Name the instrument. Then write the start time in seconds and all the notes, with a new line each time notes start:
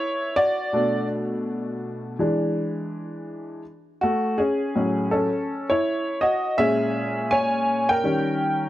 upright piano
Already playing: E4 C#5
0.36 F#4 D5
0.73 B2 A3 D4
2.19 E3 G#3 D4
4.01 A3 F#4
4.38 C#4 G#4
4.75 A2 F#3 C#4
5.11 C#4 A4
5.70 E4 C#5
6.21 F#4 D#5
6.58 A#2 G#3 C#4 G#4 E5
7.31 C#5 G#5
7.89 A#4 G5
8.04 D#3 G3 C#4